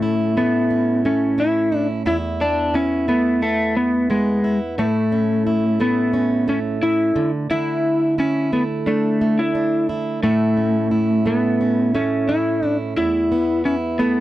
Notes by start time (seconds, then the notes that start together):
Already playing: A2 A3 C#4
0.02 E4
0.37 A3 B3
0.70 C#4
1.05 A3 C#4
1.38 C#4 E4
1.72 E4
2.06 E2 E4
2.40 B3 D4
2.74 C#4 E4
3.08 A3 B3
3.42 A3 B3
3.77 B3
4.10 G#3 B3
4.44 E4
4.78 A2 A3 E4
5.12 C#4
5.47 E4
5.80 A3 B3
6.13 C#4
6.48 A3 C#4
6.82 C#4 E4
7.16 D3
7.50 D3 E4
8.18 C#4 E4
8.53 A3 B3
8.86 A3 D4
9.21 A3
9.39 E4
9.55 D4
9.89 E4
10.23 A2 A3 E4
10.57 C#4
10.91 E4
11.26 A3 B3
11.61 C#4
11.95 A3 C#4
12.29 C#4 E4
12.63 E4
12.96 E2 E4
13.32 B3
13.65 C#4 E4
13.99 A3 B3